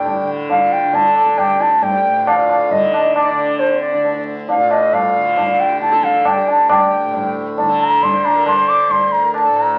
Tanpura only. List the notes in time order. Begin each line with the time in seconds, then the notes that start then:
Already playing: D2 A2 D3
0.23 D3
0.84 D3
1.48 D2
2.07 A2
2.71 D3
3.31 D3
3.94 D2
4.56 A2
5.18 D3
5.80 D3
6.42 D2
7.04 A2
7.64 D3
8.26 D3
8.87 D2
9.49 A2